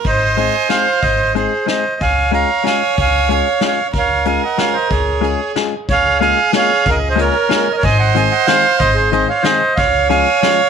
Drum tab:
HH |x-x-x-|x-x-x-|x-x-x-|x-x-x-|
SD |----o-|----o-|----o-|----o-|
BD |o-----|o-----|o-----|o-----|

HH |x-x-x-|x-x-x-|x-x-x-|x-x-x-|
SD |----o-|----o-|----o-|----o-|
BD |o-----|o-----|o-----|o-----|

HH |x-x-x-|x-x-x-|x-x-x-|
SD |----o-|----o-|----o-|
BD |o-----|o-----|o-----|